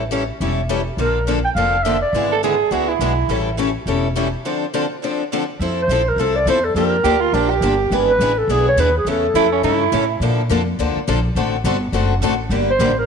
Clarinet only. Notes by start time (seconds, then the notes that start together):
1.00 A#4
1.45 G5
1.56 F5
1.83 E5
2.02 D5
5.82 C5
6.09 A#4
6.20 A4
6.36 D5
6.50 C5
6.65 A4
6.76 A#4
8.09 B4
8.38 A4
8.51 G#4
8.68 C#5
8.80 B4
8.98 G#4
9.10 A4
12.71 C5
12.99 A#4